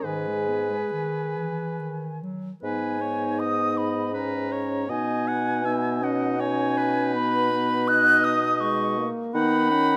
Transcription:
0.04 bassoon G#2, clarinet D#3, french horn G#4, oboe B4, flute G#5
0.27 clarinet G#3
0.48 clarinet B3
0.69 clarinet G#3
0.92 clarinet D#3
1.36 clarinet E3
1.79 clarinet D#3
2.23 clarinet F#3
2.63 bassoon G#2, french horn B3, clarinet D#4, oboe B4, flute G#5
3.01 french horn B3, oboe C#5
3.39 oboe D#5, flute D#6
3.77 flute B5
4.14 clarinet C#4, french horn C#4, oboe B4, flute A#5
4.52 oboe C#5
4.88 bassoon B2, french horn B3, clarinet D#4, oboe D#5, flute G#5
5.28 oboe F#5
5.64 french horn B3, clarinet D#4, oboe E5
6.02 french horn C#4, oboe D#5, flute F#5
6.40 french horn C#4, oboe C#5, flute G#5
6.77 oboe B4
7.14 french horn B3, flute B5
7.52 french horn B3
7.88 clarinet D#4, oboe D#5, flute F#6
8.24 flute D#6
8.60 french horn G#3, flute C#6
8.98 french horn A#3
9.34 bassoon D#3, french horn B3, clarinet D#4, oboe F#5, flute B5
9.71 french horn C#4, oboe F#5

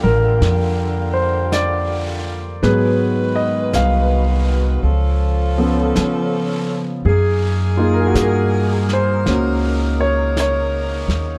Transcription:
Already playing: saxophone section D3 G3 A#3 F4 G4, grand piano F3 A#3 D4 G4 A4
0.03 upright bass A1, grand piano A#4
0.41 upright bass F2, brush sweep, snare
1.13 grand piano C5
1.52 grand piano D5, brush sweep, snare, hi-hat pedal
2.63 upright bass G#2, grand piano F#3 G#3 B3 G#4 B4, brush sweep, snare
2.67 saxophone section D#3 G#3 F#4 B4
3.35 grand piano D#5
3.73 upright bass C2, grand piano F5, brush sweep, snare, hi-hat pedal
4.82 upright bass C#2, saxophone section F3 C#4 F4 A4, brush sweep
5.58 grand piano F3 B3 C#4 A4
5.96 upright bass C#3, brush sweep, snare, hi-hat pedal
7.05 upright bass F#2, saxophone section A#3 D#4 G#4, grand piano G#4, brush sweep
7.77 grand piano A#3 D#4 F4 G#4
7.94 grand piano A#4
8.00 grand piano G#4
8.07 grand piano F#4
8.14 upright bass G2, grand piano G#4, brush sweep, snare, hi-hat pedal
8.20 grand piano A#4
8.89 snare
8.93 grand piano C5
9.26 upright bass C#2, grand piano A#3 C#4 F#4, brush sweep, snare
9.31 saxophone section A#4
10.01 grand piano C#5
10.37 grand piano C#5, brush sweep, snare, hi-hat pedal
11.08 upright bass D#2, snare

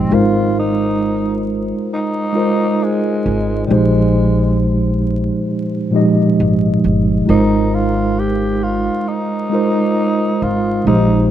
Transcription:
Already playing: tine electric piano A#2 F3 G#3 D#4 G4 D#5, tenor saxophone C4
0.09 upright bass G#1, tine electric piano G#3 D#4 F4 A#4
0.14 tenor saxophone F4, tine electric piano C5
0.59 tenor saxophone D#4
1.94 tenor saxophone D#4
2.33 tine electric piano G#3 D#4 F4 A#4
2.38 tine electric piano C5
2.83 tenor saxophone G#3
3.26 upright bass G#1
3.67 upright bass A#1, tine electric piano A#2 F3 G#3 D#4, tenor saxophone G3
3.71 tenor saxophone G#3, tine electric piano G4 C5
5.91 tine electric piano A#2 F3 G#3 D#4
5.95 tine electric piano G4 D#5
6.40 upright bass G#1
6.84 upright bass G1
7.26 upright bass G#1, tine electric piano G#3 D#4 F4 A#4, tenor saxophone D#4
7.31 tine electric piano C5
7.74 tenor saxophone F4
8.19 tenor saxophone G4
8.64 tenor saxophone F4
9.08 tenor saxophone D#4
9.50 tine electric piano G#3 D#4 F4
9.54 tine electric piano A#4 C5
10.42 upright bass G#1, tenor saxophone F4
10.85 upright bass A#1, tine electric piano A#2 F3 G#3 D#4 G4, tenor saxophone D#4
10.89 tine electric piano C5

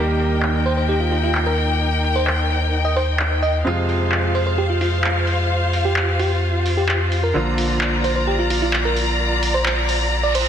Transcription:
Already playing: sub bass D#2, grand piano D#3 G3 A#3 G4, string section D#4 A#4 G5
0.20 open hi-hat
0.43 clap
0.66 fm electric piano C5, open hi-hat
0.77 fm electric piano C5
0.89 fm electric piano G4
1.00 fm electric piano F4
1.12 fm electric piano F4, open hi-hat
1.23 fm electric piano F4
1.35 clap
1.46 fm electric piano A#4
1.58 open hi-hat
2.04 open hi-hat
2.16 fm electric piano C5
2.27 clap
2.50 open hi-hat
2.85 fm electric piano D#5
2.96 fm electric piano C5, open hi-hat
3.19 clap
3.42 fm electric piano D#5, open hi-hat
3.64 sub bass F2, grand piano C3 F3 G#3 F4, string section F4 C5 F5
3.89 open hi-hat
4.12 clap
4.35 fm electric piano C5, open hi-hat
4.47 fm electric piano C5
4.58 fm electric piano G4
4.70 fm electric piano F4
4.81 fm electric piano F4, open hi-hat
5.04 clap
5.27 open hi-hat
5.73 open hi-hat
5.85 fm electric piano G4
5.96 clap
6.19 fm electric piano G4, open hi-hat
6.66 open hi-hat
6.77 fm electric piano G4
6.89 fm electric piano G4, clap
7.12 open hi-hat
7.23 fm electric piano A#4
7.34 sub bass A#1, grand piano D3 F3 A#3 F4, string section D5 A#5
7.58 open hi-hat
7.81 clap
8.04 fm electric piano C5, open hi-hat
8.16 fm electric piano C5
8.27 fm electric piano G4
8.39 fm electric piano F4
8.50 fm electric piano F4, open hi-hat
8.62 fm electric piano F4
8.73 clap
8.85 fm electric piano A#4
8.97 open hi-hat
9.43 open hi-hat
9.54 fm electric piano C5
9.66 clap
9.89 open hi-hat
10.12 reverse cymbal
10.23 fm electric piano D5
10.35 fm electric piano C5, open hi-hat

